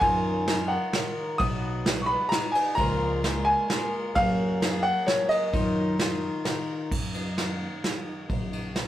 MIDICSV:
0, 0, Header, 1, 6, 480
1, 0, Start_track
1, 0, Key_signature, -6, "minor"
1, 0, Tempo, 460123
1, 16, Time_signature, 3, 2, 24, 8
1, 9259, End_track
2, 0, Start_track
2, 0, Title_t, "Upright piano"
2, 0, Program_c, 0, 0
2, 0, Note_on_c, 0, 80, 95
2, 710, Note_on_c, 0, 78, 76
2, 747, Note_off_c, 0, 80, 0
2, 1167, Note_off_c, 0, 78, 0
2, 1443, Note_on_c, 0, 87, 100
2, 2066, Note_off_c, 0, 87, 0
2, 2105, Note_on_c, 0, 85, 66
2, 2151, Note_on_c, 0, 83, 94
2, 2169, Note_off_c, 0, 85, 0
2, 2388, Note_on_c, 0, 82, 86
2, 2409, Note_off_c, 0, 83, 0
2, 2626, Note_on_c, 0, 80, 79
2, 2647, Note_off_c, 0, 82, 0
2, 2869, Note_on_c, 0, 82, 94
2, 2887, Note_off_c, 0, 80, 0
2, 3597, Note_on_c, 0, 80, 92
2, 3621, Note_off_c, 0, 82, 0
2, 4049, Note_off_c, 0, 80, 0
2, 4334, Note_on_c, 0, 77, 104
2, 5036, Note_on_c, 0, 78, 103
2, 5073, Note_off_c, 0, 77, 0
2, 5265, Note_off_c, 0, 78, 0
2, 5285, Note_on_c, 0, 73, 81
2, 5510, Note_off_c, 0, 73, 0
2, 5518, Note_on_c, 0, 75, 101
2, 6922, Note_off_c, 0, 75, 0
2, 9259, End_track
3, 0, Start_track
3, 0, Title_t, "Steel-string acoustic guitar"
3, 0, Program_c, 1, 25
3, 12, Note_on_c, 1, 54, 78
3, 19, Note_on_c, 1, 51, 82
3, 25, Note_on_c, 1, 63, 74
3, 30, Note_on_c, 1, 65, 93
3, 34, Note_on_c, 1, 70, 90
3, 473, Note_off_c, 1, 51, 0
3, 486, Note_on_c, 1, 51, 55
3, 498, Note_off_c, 1, 63, 0
3, 498, Note_off_c, 1, 65, 0
3, 502, Note_on_c, 1, 63, 59
3, 504, Note_off_c, 1, 70, 0
3, 510, Note_on_c, 1, 65, 63
3, 522, Note_on_c, 1, 70, 66
3, 542, Note_off_c, 1, 54, 0
3, 709, Note_off_c, 1, 70, 0
3, 722, Note_on_c, 1, 70, 54
3, 728, Note_off_c, 1, 65, 0
3, 730, Note_off_c, 1, 51, 0
3, 738, Note_off_c, 1, 63, 0
3, 741, Note_on_c, 1, 65, 45
3, 757, Note_on_c, 1, 63, 38
3, 968, Note_off_c, 1, 70, 0
3, 971, Note_off_c, 1, 63, 0
3, 971, Note_on_c, 1, 51, 54
3, 977, Note_off_c, 1, 65, 0
3, 983, Note_on_c, 1, 63, 56
3, 998, Note_on_c, 1, 65, 63
3, 1005, Note_on_c, 1, 70, 60
3, 1449, Note_on_c, 1, 47, 79
3, 1452, Note_off_c, 1, 51, 0
3, 1454, Note_off_c, 1, 63, 0
3, 1459, Note_on_c, 1, 54, 79
3, 1465, Note_off_c, 1, 65, 0
3, 1465, Note_on_c, 1, 59, 90
3, 1467, Note_on_c, 1, 63, 78
3, 1469, Note_off_c, 1, 70, 0
3, 1470, Note_on_c, 1, 66, 89
3, 1474, Note_on_c, 1, 71, 95
3, 1924, Note_off_c, 1, 59, 0
3, 1931, Note_off_c, 1, 47, 0
3, 1933, Note_off_c, 1, 63, 0
3, 1936, Note_off_c, 1, 54, 0
3, 1936, Note_on_c, 1, 59, 55
3, 1941, Note_off_c, 1, 66, 0
3, 1943, Note_off_c, 1, 71, 0
3, 1946, Note_on_c, 1, 63, 64
3, 1956, Note_on_c, 1, 66, 68
3, 1970, Note_on_c, 1, 71, 58
3, 2171, Note_off_c, 1, 71, 0
3, 2174, Note_off_c, 1, 59, 0
3, 2179, Note_off_c, 1, 63, 0
3, 2180, Note_off_c, 1, 66, 0
3, 2183, Note_on_c, 1, 71, 46
3, 2193, Note_on_c, 1, 66, 43
3, 2205, Note_on_c, 1, 63, 41
3, 2215, Note_on_c, 1, 59, 43
3, 2396, Note_off_c, 1, 59, 0
3, 2407, Note_off_c, 1, 63, 0
3, 2408, Note_on_c, 1, 59, 50
3, 2418, Note_off_c, 1, 71, 0
3, 2419, Note_on_c, 1, 63, 61
3, 2422, Note_off_c, 1, 66, 0
3, 2435, Note_on_c, 1, 66, 60
3, 2445, Note_on_c, 1, 71, 69
3, 2884, Note_on_c, 1, 49, 77
3, 2890, Note_off_c, 1, 59, 0
3, 2893, Note_on_c, 1, 53, 81
3, 2895, Note_off_c, 1, 63, 0
3, 2900, Note_on_c, 1, 58, 90
3, 2903, Note_off_c, 1, 66, 0
3, 2904, Note_on_c, 1, 56, 90
3, 2905, Note_off_c, 1, 71, 0
3, 2908, Note_on_c, 1, 65, 82
3, 2909, Note_on_c, 1, 70, 91
3, 3357, Note_off_c, 1, 58, 0
3, 3362, Note_on_c, 1, 58, 61
3, 3364, Note_off_c, 1, 56, 0
3, 3367, Note_off_c, 1, 49, 0
3, 3372, Note_off_c, 1, 53, 0
3, 3372, Note_off_c, 1, 65, 0
3, 3377, Note_on_c, 1, 56, 59
3, 3384, Note_on_c, 1, 65, 63
3, 3392, Note_off_c, 1, 70, 0
3, 3396, Note_on_c, 1, 70, 68
3, 3839, Note_off_c, 1, 58, 0
3, 3843, Note_on_c, 1, 58, 57
3, 3844, Note_off_c, 1, 56, 0
3, 3856, Note_on_c, 1, 56, 57
3, 3857, Note_off_c, 1, 65, 0
3, 3870, Note_on_c, 1, 65, 61
3, 3878, Note_off_c, 1, 70, 0
3, 3882, Note_on_c, 1, 70, 68
3, 4329, Note_on_c, 1, 54, 75
3, 4333, Note_off_c, 1, 56, 0
3, 4333, Note_off_c, 1, 58, 0
3, 4338, Note_on_c, 1, 58, 86
3, 4340, Note_off_c, 1, 65, 0
3, 4347, Note_on_c, 1, 61, 80
3, 4348, Note_on_c, 1, 66, 92
3, 4350, Note_off_c, 1, 70, 0
3, 4355, Note_on_c, 1, 70, 91
3, 4797, Note_off_c, 1, 58, 0
3, 4801, Note_on_c, 1, 58, 61
3, 4802, Note_off_c, 1, 61, 0
3, 4814, Note_on_c, 1, 61, 54
3, 4823, Note_off_c, 1, 66, 0
3, 4828, Note_on_c, 1, 66, 61
3, 4835, Note_off_c, 1, 70, 0
3, 4839, Note_on_c, 1, 70, 74
3, 5275, Note_off_c, 1, 58, 0
3, 5279, Note_on_c, 1, 58, 64
3, 5280, Note_off_c, 1, 61, 0
3, 5293, Note_on_c, 1, 61, 56
3, 5301, Note_off_c, 1, 66, 0
3, 5305, Note_on_c, 1, 66, 60
3, 5315, Note_off_c, 1, 70, 0
3, 5319, Note_on_c, 1, 70, 58
3, 5762, Note_off_c, 1, 54, 0
3, 5766, Note_off_c, 1, 58, 0
3, 5766, Note_on_c, 1, 54, 82
3, 5770, Note_on_c, 1, 51, 78
3, 5771, Note_off_c, 1, 61, 0
3, 5776, Note_on_c, 1, 63, 89
3, 5777, Note_off_c, 1, 66, 0
3, 5781, Note_on_c, 1, 65, 94
3, 5783, Note_off_c, 1, 70, 0
3, 5787, Note_on_c, 1, 70, 88
3, 6226, Note_off_c, 1, 51, 0
3, 6235, Note_off_c, 1, 63, 0
3, 6238, Note_on_c, 1, 51, 70
3, 6248, Note_off_c, 1, 54, 0
3, 6248, Note_on_c, 1, 63, 71
3, 6250, Note_off_c, 1, 65, 0
3, 6256, Note_off_c, 1, 70, 0
3, 6263, Note_on_c, 1, 65, 73
3, 6268, Note_on_c, 1, 70, 69
3, 6709, Note_off_c, 1, 51, 0
3, 6720, Note_off_c, 1, 63, 0
3, 6722, Note_on_c, 1, 51, 62
3, 6732, Note_on_c, 1, 63, 60
3, 6736, Note_off_c, 1, 65, 0
3, 6739, Note_off_c, 1, 70, 0
3, 6748, Note_on_c, 1, 65, 61
3, 6752, Note_on_c, 1, 70, 71
3, 7206, Note_off_c, 1, 51, 0
3, 7212, Note_off_c, 1, 63, 0
3, 7219, Note_off_c, 1, 65, 0
3, 7221, Note_off_c, 1, 70, 0
3, 9259, End_track
4, 0, Start_track
4, 0, Title_t, "Steel-string acoustic guitar"
4, 0, Program_c, 2, 25
4, 7213, Note_on_c, 2, 42, 70
4, 7470, Note_on_c, 2, 63, 53
4, 7695, Note_on_c, 2, 51, 54
4, 7942, Note_on_c, 2, 58, 51
4, 8160, Note_off_c, 2, 42, 0
4, 8172, Note_on_c, 2, 42, 55
4, 8415, Note_off_c, 2, 63, 0
4, 8419, Note_on_c, 2, 63, 52
4, 8625, Note_off_c, 2, 42, 0
4, 8645, Note_on_c, 2, 42, 67
4, 8895, Note_off_c, 2, 63, 0
4, 8899, Note_on_c, 2, 63, 49
4, 9114, Note_off_c, 2, 51, 0
4, 9126, Note_on_c, 2, 51, 51
4, 9259, Note_off_c, 2, 42, 0
4, 9259, Note_off_c, 2, 51, 0
4, 9259, Note_off_c, 2, 58, 0
4, 9259, Note_off_c, 2, 63, 0
4, 9259, End_track
5, 0, Start_track
5, 0, Title_t, "Upright bass"
5, 0, Program_c, 3, 32
5, 16, Note_on_c, 3, 42, 103
5, 793, Note_off_c, 3, 42, 0
5, 1460, Note_on_c, 3, 35, 105
5, 2235, Note_off_c, 3, 35, 0
5, 2898, Note_on_c, 3, 37, 104
5, 3673, Note_off_c, 3, 37, 0
5, 4340, Note_on_c, 3, 42, 115
5, 5114, Note_off_c, 3, 42, 0
5, 5774, Note_on_c, 3, 42, 99
5, 6551, Note_off_c, 3, 42, 0
5, 7214, Note_on_c, 3, 42, 86
5, 7993, Note_off_c, 3, 42, 0
5, 8656, Note_on_c, 3, 34, 84
5, 9259, Note_off_c, 3, 34, 0
5, 9259, End_track
6, 0, Start_track
6, 0, Title_t, "Drums"
6, 12, Note_on_c, 9, 51, 66
6, 16, Note_on_c, 9, 36, 102
6, 116, Note_off_c, 9, 51, 0
6, 120, Note_off_c, 9, 36, 0
6, 497, Note_on_c, 9, 38, 86
6, 497, Note_on_c, 9, 51, 62
6, 601, Note_off_c, 9, 38, 0
6, 601, Note_off_c, 9, 51, 0
6, 973, Note_on_c, 9, 38, 87
6, 973, Note_on_c, 9, 51, 59
6, 1078, Note_off_c, 9, 38, 0
6, 1078, Note_off_c, 9, 51, 0
6, 1457, Note_on_c, 9, 51, 61
6, 1458, Note_on_c, 9, 36, 113
6, 1561, Note_off_c, 9, 51, 0
6, 1563, Note_off_c, 9, 36, 0
6, 1940, Note_on_c, 9, 38, 86
6, 1940, Note_on_c, 9, 51, 65
6, 2044, Note_off_c, 9, 38, 0
6, 2044, Note_off_c, 9, 51, 0
6, 2418, Note_on_c, 9, 38, 82
6, 2418, Note_on_c, 9, 51, 66
6, 2523, Note_off_c, 9, 38, 0
6, 2523, Note_off_c, 9, 51, 0
6, 2659, Note_on_c, 9, 51, 63
6, 2763, Note_off_c, 9, 51, 0
6, 2899, Note_on_c, 9, 36, 106
6, 2899, Note_on_c, 9, 51, 62
6, 3003, Note_off_c, 9, 36, 0
6, 3003, Note_off_c, 9, 51, 0
6, 3381, Note_on_c, 9, 38, 85
6, 3381, Note_on_c, 9, 51, 62
6, 3485, Note_off_c, 9, 38, 0
6, 3485, Note_off_c, 9, 51, 0
6, 3858, Note_on_c, 9, 38, 84
6, 3858, Note_on_c, 9, 51, 61
6, 3962, Note_off_c, 9, 38, 0
6, 3962, Note_off_c, 9, 51, 0
6, 4339, Note_on_c, 9, 51, 62
6, 4340, Note_on_c, 9, 36, 108
6, 4444, Note_off_c, 9, 36, 0
6, 4444, Note_off_c, 9, 51, 0
6, 4822, Note_on_c, 9, 38, 91
6, 4822, Note_on_c, 9, 51, 64
6, 4926, Note_off_c, 9, 38, 0
6, 4926, Note_off_c, 9, 51, 0
6, 5297, Note_on_c, 9, 38, 82
6, 5297, Note_on_c, 9, 51, 58
6, 5401, Note_off_c, 9, 38, 0
6, 5401, Note_off_c, 9, 51, 0
6, 5533, Note_on_c, 9, 51, 55
6, 5637, Note_off_c, 9, 51, 0
6, 5775, Note_on_c, 9, 36, 111
6, 5777, Note_on_c, 9, 51, 60
6, 5880, Note_off_c, 9, 36, 0
6, 5881, Note_off_c, 9, 51, 0
6, 6254, Note_on_c, 9, 38, 87
6, 6254, Note_on_c, 9, 51, 62
6, 6358, Note_off_c, 9, 38, 0
6, 6358, Note_off_c, 9, 51, 0
6, 6731, Note_on_c, 9, 38, 81
6, 6731, Note_on_c, 9, 51, 62
6, 6835, Note_off_c, 9, 38, 0
6, 6835, Note_off_c, 9, 51, 0
6, 7214, Note_on_c, 9, 36, 97
6, 7214, Note_on_c, 9, 49, 84
6, 7318, Note_off_c, 9, 36, 0
6, 7318, Note_off_c, 9, 49, 0
6, 7450, Note_on_c, 9, 51, 53
6, 7555, Note_off_c, 9, 51, 0
6, 7697, Note_on_c, 9, 38, 80
6, 7697, Note_on_c, 9, 51, 56
6, 7801, Note_off_c, 9, 38, 0
6, 7801, Note_off_c, 9, 51, 0
6, 8180, Note_on_c, 9, 38, 73
6, 8180, Note_on_c, 9, 51, 53
6, 8284, Note_off_c, 9, 38, 0
6, 8284, Note_off_c, 9, 51, 0
6, 8656, Note_on_c, 9, 36, 98
6, 8656, Note_on_c, 9, 51, 48
6, 8760, Note_off_c, 9, 36, 0
6, 8760, Note_off_c, 9, 51, 0
6, 8898, Note_on_c, 9, 51, 49
6, 9002, Note_off_c, 9, 51, 0
6, 9135, Note_on_c, 9, 38, 73
6, 9135, Note_on_c, 9, 51, 50
6, 9239, Note_off_c, 9, 38, 0
6, 9239, Note_off_c, 9, 51, 0
6, 9259, End_track
0, 0, End_of_file